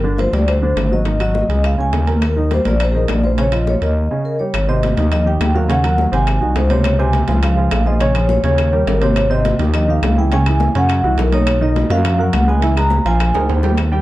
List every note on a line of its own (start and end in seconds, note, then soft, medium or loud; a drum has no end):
0.00 0.27 G1 medium
0.00 0.16 D3 medium
0.00 0.16 D4 medium
0.00 0.20 A#4 medium
0.18 0.30 F3 medium
0.18 0.30 F4 medium
0.18 0.34 C5 medium
0.18 high bongo medium
0.18 high conga medium
0.18 high timbale medium
0.33 0.73 D2 loud
0.33 0.57 G3 medium
0.33 0.57 G4 medium
0.33 0.48 D5 medium
0.33 high conga medium
0.33 high timbale medium
0.48 0.93 C5 medium
0.48 high bongo medium
0.48 high conga soft
0.48 high timbale medium
0.48 claves medium
0.62 0.86 D3 medium
0.62 0.86 D4 medium
0.62 high conga soft
0.76 1.43 G#1 medium
0.76 high bongo medium
0.76 low bongo medium
0.76 high conga medium
0.76 high timbale medium
0.76 low timbale medium
0.76 claves medium
0.91 1.03 F#3 medium
0.91 1.03 F#4 medium
0.91 1.21 D#5 medium
0.91 high conga medium
1.05 1.17 D#3 medium
1.05 1.18 D#4 medium
1.05 high bongo medium
1.05 high conga soft
1.05 high timbale medium
1.20 1.44 F#3 medium
1.20 1.44 F#4 medium
1.20 1.62 D#5 medium
1.20 high conga soft
1.20 high timbale medium
1.20 claves medium
1.35 high bongo medium
1.35 high conga medium
1.49 1.76 C#2 loud
1.49 1.73 G#3 medium
1.49 1.73 G#4 medium
1.49 high bongo soft
1.49 high conga soft
1.49 high timbale medium
1.63 1.80 F5 medium
1.63 high bongo medium
1.63 high conga soft
1.63 high timbale medium
1.63 claves medium
1.78 1.92 C#2 medium
1.78 2.02 C#3 medium
1.78 2.02 C#4 medium
1.78 2.06 G#5 medium
1.78 high bongo soft
1.78 high conga soft
1.93 2.60 D#2 loud
1.93 high bongo medium
1.93 low bongo medium
1.93 high conga soft
1.93 high timbale medium
1.93 low timbale medium
2.07 2.31 A#3 medium
2.07 2.31 A#4 medium
2.07 high bongo soft
2.07 high conga medium
2.07 high timbale medium
2.22 2.50 A#4 medium
2.22 high bongo medium
2.22 high conga soft
2.22 high timbale medium
2.22 claves medium
2.36 2.48 D#3 medium
2.36 2.49 D#4 medium
2.36 high conga soft
2.51 2.63 G3 medium
2.51 2.63 G4 medium
2.51 2.66 C5 medium
2.51 high bongo medium
2.51 high conga medium
2.51 high timbale medium
2.65 3.06 A#1 loud
2.65 2.89 A#3 medium
2.65 2.89 A#4 medium
2.65 2.81 D5 medium
2.65 high conga medium
2.65 high timbale medium
2.80 2.91 C5 medium
2.80 high bongo medium
2.80 high timbale medium
2.80 claves medium
2.92 3.18 D#3 medium
2.92 3.18 D#4 medium
2.92 2.95 G#4 medium
2.92 high conga soft
2.97 3.09 A#4 medium
3.08 3.76 A#1 medium
3.08 3.25 D5 medium
3.08 high bongo medium
3.08 low bongo medium
3.08 high conga medium
3.08 high timbale medium
3.08 low timbale medium
3.08 claves medium
3.23 3.35 F3 medium
3.23 3.35 F4 medium
3.23 3.31 C5 medium
3.23 high conga medium
3.37 3.49 C#3 medium
3.37 3.50 C#4 medium
3.37 3.52 C#5 medium
3.37 high bongo medium
3.37 high conga soft
3.37 high timbale medium
3.52 3.76 F3 medium
3.52 3.76 F4 medium
3.52 3.68 D#5 medium
3.52 high conga soft
3.52 high timbale medium
3.52 claves medium
3.67 3.83 C#5 medium
3.67 high bongo medium
3.67 high conga medium
3.82 4.08 D#2 medium
3.82 4.05 A#3 medium
3.82 4.05 A#4 medium
3.82 4.36 D#5 medium
3.82 high bongo soft
3.82 high conga soft
3.82 high timbale medium
4.11 4.34 C#3 medium
4.11 4.35 C#4 medium
4.25 4.32 A#4 medium
4.39 4.52 G3 medium
4.39 4.52 G4 medium
4.39 4.66 C#5 medium
4.54 4.94 G#1 medium
4.54 high bongo medium
4.54 high conga soft
4.54 high timbale medium
4.54 claves medium
4.68 4.92 C3 medium
4.68 4.92 C4 medium
4.68 4.92 C5 medium
4.68 4.96 D#5 medium
4.83 high bongo medium
4.83 high conga medium
4.83 high timbale medium
4.97 5.38 D#2 loud
4.97 5.21 D#3 medium
4.97 5.21 D#4 medium
4.97 5.21 G4 medium
4.97 high conga medium
4.97 high timbale medium
5.12 5.26 D#5 medium
5.12 high bongo medium
5.12 high conga soft
5.12 low conga medium
5.12 high timbale medium
5.12 claves medium
5.26 5.50 D#3 medium
5.26 5.50 D#4 medium
5.26 5.50 G4 medium
5.26 5.57 G5 medium
5.26 high conga soft
5.40 6.07 D#2 loud
5.40 high bongo medium
5.40 low bongo medium
5.40 high conga medium
5.40 high timbale medium
5.40 low timbale medium
5.40 claves medium
5.55 5.67 F#3 medium
5.55 5.67 F#4 medium
5.55 5.67 A#4 medium
5.55 5.62 F5 medium
5.55 high conga medium
5.68 5.81 C#3 medium
5.68 5.81 C#4 medium
5.68 5.81 C#5 medium
5.68 6.15 F#5 medium
5.68 high bongo medium
5.68 high conga soft
5.68 high timbale medium
5.84 6.07 F#3 medium
5.84 6.07 F#4 medium
5.84 6.08 A#4 medium
5.84 high conga soft
5.84 high timbale medium
5.84 claves medium
5.98 high bongo medium
5.98 high conga medium
6.12 6.39 G#1 loud
6.12 6.36 C3 medium
6.12 6.36 C4 medium
6.12 6.36 C5 medium
6.12 6.54 G#5 loud
6.12 high bongo soft
6.12 high conga soft
6.12 high timbale medium
6.27 high bongo medium
6.27 high conga soft
6.27 high timbale medium
6.27 claves medium
6.41 6.55 C2 medium
6.41 6.65 D#3 medium
6.41 6.65 D#4 medium
6.41 6.65 F#4 medium
6.41 high bongo soft
6.41 high conga soft
6.56 7.23 C#2 loud
6.56 6.72 C5 medium
6.56 high bongo medium
6.56 low bongo medium
6.56 high conga soft
6.56 high timbale medium
6.56 low timbale medium
6.70 6.94 C3 medium
6.70 6.94 C4 medium
6.70 6.94 C5 medium
6.70 7.00 C#5 medium
6.70 high bongo soft
6.70 high conga medium
6.70 high timbale medium
6.84 high bongo medium
6.84 high conga soft
6.84 high timbale medium
6.84 claves medium
6.99 7.23 C3 medium
6.99 7.23 C4 medium
6.99 7.23 C5 medium
6.99 7.27 G#5 medium
6.99 high conga soft
7.13 high bongo medium
7.13 high conga medium
7.13 high timbale medium
7.28 7.69 C#2 loud
7.28 7.52 F3 medium
7.28 7.52 F4 medium
7.28 7.52 G#4 medium
7.28 high conga medium
7.28 high timbale medium
7.42 7.83 F5 medium
7.42 high bongo medium
7.42 high conga soft
7.42 low conga medium
7.42 high timbale medium
7.42 claves medium
7.56 7.81 F3 medium
7.56 7.81 F4 medium
7.56 7.81 G#4 medium
7.56 high conga soft
7.71 8.39 A#1 loud
7.71 high bongo medium
7.71 low bongo medium
7.71 high conga medium
7.71 high timbale loud
7.71 low timbale medium
7.71 claves medium
7.86 7.98 F3 medium
7.86 7.98 F4 medium
7.86 7.98 G#4 medium
7.86 8.02 D#5 medium
7.86 high conga medium
8.00 8.12 C#3 medium
8.00 8.13 C#4 medium
8.00 8.29 C#5 medium
8.00 8.13 C#5 medium
8.00 high bongo medium
8.00 high conga soft
8.00 high timbale medium
8.14 8.39 F3 medium
8.14 8.39 F4 medium
8.14 8.39 G#4 medium
8.14 high conga soft
8.14 high timbale medium
8.14 claves medium
8.29 8.90 C#5 medium
8.29 high bongo medium
8.29 high conga medium
8.43 8.84 D#2 medium
8.43 8.67 C#3 medium
8.43 8.68 C#4 medium
8.43 8.68 C#5 medium
8.43 high bongo soft
8.43 high conga soft
8.43 high timbale medium
8.58 high bongo medium
8.58 high conga soft
8.58 high timbale medium
8.58 claves medium
8.73 8.96 G3 medium
8.73 8.97 G4 medium
8.73 8.97 A#4 medium
8.73 high bongo soft
8.73 high conga soft
8.87 9.54 G#1 medium
8.87 9.01 A#4 medium
8.87 high bongo medium
8.87 low bongo medium
8.87 high timbale medium
8.87 low timbale medium
9.01 9.25 C3 medium
9.01 9.25 C4 medium
9.01 9.25 C5 medium
9.01 9.29 C#5 medium
9.01 high bongo soft
9.01 high conga medium
9.01 high timbale medium
9.16 high bongo medium
9.16 high conga soft
9.16 high timbale medium
9.16 claves medium
9.30 9.54 C3 medium
9.30 9.54 C4 medium
9.30 9.54 C5 medium
9.30 9.58 D#5 medium
9.30 high conga soft
9.45 high bongo medium
9.45 high conga medium
9.45 high timbale medium
9.59 10.00 D#2 loud
9.59 9.83 D#3 medium
9.59 9.83 D#4 medium
9.59 9.83 G4 medium
9.59 high conga medium
9.59 high timbale medium
9.74 9.88 D#5 loud
9.74 high bongo medium
9.74 high conga soft
9.74 low conga medium
9.74 high timbale medium
9.74 claves medium
9.88 10.12 D#3 medium
9.88 10.12 D#4 medium
9.88 10.12 G4 medium
9.88 10.16 F5 medium
9.88 high conga soft
10.02 10.69 C#2 loud
10.02 high bongo medium
10.02 low bongo medium
10.02 high conga medium
10.02 high timbale medium
10.02 low timbale medium
10.02 claves medium
10.16 10.29 E3 medium
10.16 10.29 E4 medium
10.16 10.29 G#4 medium
10.16 10.33 G5 medium
10.16 high conga medium
10.31 10.44 C#3 medium
10.31 10.44 C#4 medium
10.31 10.44 C#5 medium
10.31 10.77 G#5 loud
10.31 high bongo medium
10.31 high conga soft
10.31 high timbale medium
10.46 10.70 E3 medium
10.46 10.70 E4 medium
10.46 10.70 G#4 medium
10.46 high conga soft
10.46 high timbale medium
10.46 claves medium
10.60 high bongo medium
10.60 high conga medium
10.75 11.02 F#2 loud
10.75 10.99 C#3 medium
10.75 10.99 C#4 medium
10.75 10.99 C#5 medium
10.75 11.16 F#5 medium
10.75 high bongo soft
10.75 high conga soft
10.75 high timbale medium
10.89 high bongo medium
10.89 high timbale medium
10.89 claves medium
11.03 11.17 C2 medium
11.03 11.27 E3 medium
11.03 11.27 E4 medium
11.03 11.28 F#4 medium
11.03 high bongo soft
11.03 high conga soft
11.17 11.84 B1 medium
11.17 11.34 A#4 medium
11.17 high bongo medium
11.17 low bongo medium
11.17 high conga soft
11.17 high timbale medium
11.17 low timbale medium
11.32 11.56 D#3 medium
11.32 11.56 D#4 medium
11.32 11.63 C#5 medium
11.32 11.56 D#5 medium
11.32 high bongo soft
11.32 high conga medium
11.32 high timbale medium
11.47 high bongo medium
11.47 high conga soft
11.47 high timbale loud
11.47 claves medium
11.61 11.85 D#3 medium
11.61 11.85 D#4 medium
11.61 11.85 D#5 medium
11.61 11.92 D#5 medium
11.61 high conga soft
11.76 high bongo medium
11.76 high conga medium
11.76 high timbale medium
11.90 12.30 F#2 loud
11.90 12.13 F#3 medium
11.90 12.14 F#4 medium
11.90 12.14 A#4 medium
11.90 12.20 F5 loud
11.90 high conga loud
11.90 high timbale medium
12.05 high bongo medium
12.05 high conga soft
12.05 low conga medium
12.05 high timbale medium
12.05 claves medium
12.18 12.42 F#3 medium
12.18 12.42 F#4 medium
12.18 12.43 A#4 medium
12.18 12.50 F#5 medium
12.18 high conga soft
12.33 13.00 C#2 loud
12.33 high bongo medium
12.33 low bongo medium
12.33 high conga medium
12.33 high timbale medium
12.33 claves medium
12.47 12.59 G#3 medium
12.47 12.60 G#4 medium
12.47 12.60 B4 medium
12.47 12.76 G#5 medium
12.47 high conga medium
12.61 12.73 E3 medium
12.61 12.74 E4 medium
12.61 12.74 E5 medium
12.61 high bongo medium
12.61 high conga soft
12.61 high timbale medium
12.76 13.00 G#3 medium
12.76 13.00 G#4 medium
12.76 13.00 B4 medium
12.76 13.04 A#5 loud
12.76 high conga soft
12.76 high timbale medium
12.76 claves medium
12.90 high bongo medium
12.90 high conga medium
13.05 13.32 A#1 loud
13.05 13.29 F3 medium
13.05 13.29 F4 medium
13.05 13.29 F5 medium
13.05 13.46 G#5 loud
13.05 high bongo soft
13.05 high conga soft
13.05 high timbale medium
13.19 high bongo medium
13.19 high conga soft
13.19 high timbale medium
13.19 claves medium
13.34 13.48 D2 medium
13.34 13.58 G#3 medium
13.34 13.58 G#4 medium
13.34 13.58 A#4 medium
13.34 high bongo medium
13.34 high timbale medium
13.49 14.02 D#2 loud
13.49 high conga soft
13.49 high timbale medium
13.63 13.75 G3 medium
13.63 13.75 G4 medium
13.63 13.75 G5 medium
13.63 low bongo medium
13.63 high conga medium
13.63 low timbale medium
13.78 high bongo medium
13.78 high conga soft
13.78 high timbale medium
13.78 claves medium
13.92 14.02 G3 medium
13.92 14.02 G4 medium
13.92 14.02 G5 medium
13.92 high conga soft